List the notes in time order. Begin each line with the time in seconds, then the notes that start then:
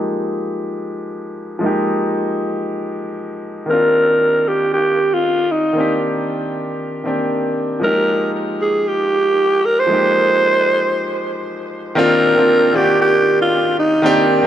Already playing: F3 G#3 A#3 D#4 G4
1.59 F3 G#3 A#3
1.64 D#4 G4
3.66 D#3 A#3 C4
3.70 D4 F4 A#4
4.48 G4
4.74 G4
5.14 F4
5.52 D#4
5.73 D#3 A#3 C4
5.78 D4 G4
7.04 D#3 A#3 C4 D4 G4
7.80 F3 G#3 A#3
7.84 D#4 G4 A#4
8.62 G#4
8.88 G4
9.65 A#4
9.80 C5
9.87 F3 G#3 A#3
9.92 D#4 G4
11.95 D#3 A#3 C4 D4 F4 A#4
12.35 D#3 A#3 C4 D4 F4
12.73 D#3 A#3 C4 D4 F#4 G4
12.82 G4
13.02 G4
13.42 F4
13.79 D#4
14.02 D#3 A#3 C4 D4 G4
14.42 D#3 A#3